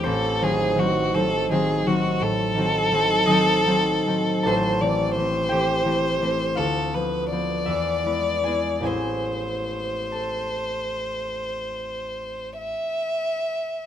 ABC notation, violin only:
X:1
M:12/8
L:1/8
Q:3/8=53
K:Am
V:1 name="Violin"
A ^G ^F A G F A6 | c d c4 A B d4 | c8- c e3 |]